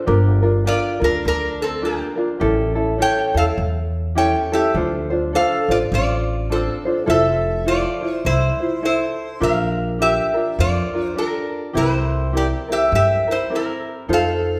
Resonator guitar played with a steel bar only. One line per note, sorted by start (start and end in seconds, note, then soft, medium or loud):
0.67 1.00 F4 medium
0.67 1.00 D5 loud
1.04 1.24 D4 medium
1.04 1.26 A#4 medium
1.28 1.59 D4 medium
1.28 1.62 A#4 loud
1.62 1.83 C4 medium
1.62 1.85 A4 medium
1.85 2.28 A#3 soft
1.85 2.28 G4 medium
3.02 3.34 C#5 medium
3.02 3.37 G5 loud
3.37 3.44 A4 medium
3.37 3.43 F5 medium
4.18 4.50 C#5 medium
4.18 4.53 G5 medium
4.53 4.75 G4 medium
4.53 4.74 E5 medium
5.35 5.67 A4 medium
5.35 5.71 F5 medium
5.71 5.77 F4 medium
5.71 5.77 D5 medium
5.94 6.82 F4 medium
5.94 6.83 D5 medium
6.52 7.06 C4 soft
6.52 7.09 A4 medium
7.10 7.64 A4 medium
7.10 7.67 E5 medium
7.68 8.22 F4 medium
7.68 8.14 D5 loud
8.14 8.26 C5 loud
8.26 8.80 E4 medium
8.26 8.84 C5 loud
8.85 9.39 E4 medium
8.85 9.43 C5 medium
9.43 9.97 A#4 medium
9.43 10.01 F5 medium
10.02 10.56 G4 medium
10.02 10.60 E5 loud
10.60 11.14 F4 medium
10.60 11.07 D5 loud
11.07 11.19 C5 loud
11.18 11.73 D4 medium
11.18 11.72 A#4 medium
11.77 12.31 E4 medium
11.77 12.31 C5 medium
12.37 12.46 G4 medium
12.37 12.46 D5 medium
12.72 12.92 G4 medium
12.72 12.94 E5 medium
12.95 13.27 G4 medium
12.95 13.31 E5 loud
13.31 13.51 E4 medium
13.31 13.54 C5 medium
13.55 14.08 E4 soft
13.55 14.12 A#4 medium
14.13 14.60 A4 medium
14.13 14.60 F5 loud